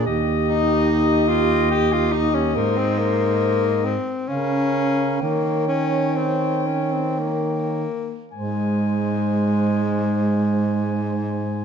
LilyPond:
<<
  \new Staff \with { instrumentName = "Clarinet" } { \time 3/4 \key aes \major \tempo 4 = 64 ees''2.~ | ees''4. r8 f''4 | g''2~ g''8 r8 | aes''2. | }
  \new Staff \with { instrumentName = "Alto saxophone" } { \time 3/4 \key aes \major g'2. | c''4. r8 bes'4 | des''2~ des''8 r8 | c''2. | }
  \new Staff \with { instrumentName = "Tenor saxophone" } { \time 3/4 \key aes \major r8 ees'4 f'8 g'16 f'16 ees'16 des'16 | bes16 c'16 bes4 c'8 des'4 | bes8 des'8 c'8 des'16 c'16 bes4 | aes2. | }
  \new Staff \with { instrumentName = "Baritone saxophone" } { \clef bass \time 3/4 \key aes \major ees,2. | aes,4. r8 des4 | ees2~ ees8 r8 | aes,2. | }
>>